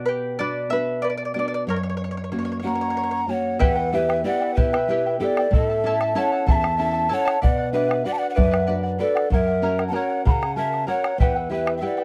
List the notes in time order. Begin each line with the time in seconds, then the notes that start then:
Already playing: B2
0.06 G4 B4
0.39 B3 D4 F#4 B4 D5
0.70 B3 D4 F#4 B4 E5
1.02 B4 D5
1.10 D5
1.17 D5
1.25 D5
1.34 B3 D4 F#4 D5
1.39 D5
1.48 D5
1.54 D5
1.67 F#2 A#4 C#5
1.76 C#5
1.83 C#5
1.89 C#5
1.97 C#5
2.04 C#5
2.11 C#5
2.17 C#5
2.24 C#5
2.32 A#3 C#4 F#4 C#5
2.39 C#5
2.45 C#5
2.52 C#5
2.60 C#5 F#5
2.64 A#3 C#4 F#4 C#5 A#5
2.75 C#5
2.81 C#5
2.90 C#5
2.97 C#5
3.03 C#5
3.11 C#5
3.28 A#3 C#4 F#4 C#5 G5
3.34 F#5
3.59 E2 E4 G4 B4 E5 F#5 G5, bombo low
3.75 E4 B4 G5
3.92 B3 E4 G4 B4 E5 G5, bombo rim
4.09 E4 B4 G5, bombo rim
4.24 B3 E4 G4 B4 D5 E5 F#5 G5
4.40 E4 B4 G5, bombo rim
4.55 B2 E4 G4 B4 E5 G5, bombo low
4.59 E5
4.73 E4 G4 B4 E5 G5, bombo rim
4.88 B3 E4 G4 B4 E5 G5
5.06 E4 B4 G5
5.20 B3 E4 G4 A4 B4 D5 E5 G5
5.37 E4 B4 G5, bombo rim
5.51 A2 E4 A4 D#5 E5, bombo low
5.55 A5
5.66 E5 A5
5.71 E4 A4
5.83 C#4 E4 A4 C#5 E5 A5, bombo rim
6.01 E4 A4 C#5 E5 A5, bombo rim
6.15 C#4 E4 A4 C#5 E5 F#5 A5
6.32 E4 A4 A5, bombo rim
6.47 E2 E4 A4 E5 A5, bombo low
6.51 A#5
6.55 A5
6.61 E4 A4 A5, bombo rim
6.77 C#4 E4 A4 E5 A5
6.83 A5
6.93 E4 A4 A5
7.09 C#4 E4 A4 C#5 E5 A5
7.14 F#5
7.25 E4 A4 C#5 E5 A5, bombo rim
7.42 B2 B4 D5 F#5, bombo low
7.58 D5 F#5
7.73 D4 F#4 B4 D5 E5 F#5, bombo rim
7.89 D5 F#5, bombo rim
8.04 D4 F#4 B4 D5 F#5
8.13 F#5 A5
8.18 D5 F#5
8.22 D5, bombo rim
8.30 D5 F#5
8.34 F#2 B4 D5 E5 F#5
8.38 bombo low
8.51 B4 D5 F#5, bombo rim
8.67 D4 F#4 B4 D5 F#5
8.83 D5 F#5
8.99 D4 F#4 A4 B4 D5 F#5
9.15 D5 F#5, bombo rim
9.30 F#2 A#4 C#5 F#5, bombo low
9.35 E5
9.48 C#5 F#5
9.62 C#4 F#4 A#4 C#5 F#5, bombo rim
9.79 A#4 C#5 F#5, bombo rim
9.88 C#4 F#5 A5
9.92 F#4 A#4 C#5 F#5, bombo rim
10.10 C#5 F#5
10.25 C#3 A#4 C#5 F#5 B5, bombo rim, bombo low
10.31 A#5
10.41 C#5 F#5, bombo rim
10.55 C#4 F#4 A#4 C#5 E5 F#5 A5
10.73 C#5 F#5, bombo rim
10.87 C#4 F#4 A#4 C#5 F#5, bombo rim
11.04 A#4 C#5 F#5, bombo rim
11.18 E2 E4 G4 B4 E5 F#5 G5, bombo low
11.35 E4 B4 G5
11.50 E4 G4 B4 E5 G5, bombo rim
11.66 E4 B4 G5, bombo rim
11.76 E5 G5
11.81 E4 G4 B4 E5 F#5 G5
11.85 D5
11.97 E4 B4 G5, bombo rim